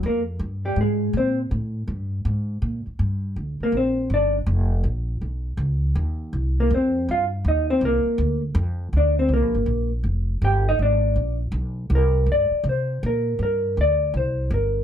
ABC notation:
X:1
M:4/4
L:1/8
Q:"Swing" 1/4=162
K:Gphr
V:1 name="Hollow-body jazz guitar"
[B,B] z2 [G,G] [A,A]2 [Cc] z | z8 | z3 [B,B] [Cc]2 [Dd] z | z8 |
z3 [B,B] [Cc]2 [Ff] z | [Ee] [Cc] [B,B]3 z3 | [Dd] [Cc] [B,B]3 z3 | [Gg] [Ee] [Dd]3 z3 |
B2 d2 c2 B2 | B2 d2 c2 B2 |]
V:2 name="Upright bass" clef=bass
F,,2 G,,2 A,,2 B,,2 | =A,,2 G,,2 _A,,2 B,, z | G,,2 D,, z B,,,2 G,,,2 | F,,,2 B,,,2 =B,,,2 ^C,,2 |
E,,2 C,,2 F,,2 G,,2 | E,,2 C,, z D,,2 F,,2 | D,,2 (3C,, B,,, G,,, B,,,2 F,,,2 | G,,,2 A,,,2 B,,,2 =B,,,2 |
C,,2 G,, z C,2 B,,2 | G,,2 D,,2 C,,2 G,,,2 |]